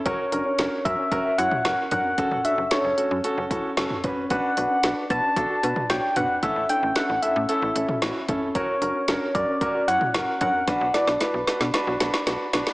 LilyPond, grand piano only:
\new Staff \with { instrumentName = "Grand piano" } { \time 4/4 \key b \minor \tempo 4 = 113 <cis' fis' ais'>8 <cis' fis' ais'>8 <cis' fis' ais'>8 <cis' fis' ais'>8 <cis' fis' ais'>8 <cis' fis' cis''>8 <cis' fis' ais'>8 <cis' fis' ais'>8 | <cis' fis' a'>8 <cis' fis' a'>8 <cis' fis' a'>8 <cis' fis' a'>8 <cis' fis' a'>8 <cis' fis' a'>8 <cis' fis' a'>8 <cis' fis' b'>8 | <d' fis' b'>8 <d' fis' b'>8 <d' fis' b'>8 <d' fis' b'>8 <d' fis' a'>8 <d' fis' b'>8 <d' fis' cis''>8 <d' fis' b'>8 | <cis' e' a'>8 <cis' e' a'>8 <cis' e' a'>8 <cis' e' a'>8 <cis' e' a'>8 <cis' e' a'>8 <cis' e' fis'>8 <cis' e' a'>8 |
<cis' fis' ais'>8 <cis' fis' ais'>8 <cis' fis' ais'>8 <cis' fis' ais'>8 <cis' fis' ais'>8 <cis' fis' cis''>8 <cis' fis' ais'>8 <cis' fis' ais'>8 | <d' fis' b'>8 <d' fis' b'>8 <d' fis' b'>8 <d' fis' b'>8 <d' fis' b'>8 <d' fis' b'>8 <d' fis' b'>8 <d' fis' b'>8 | }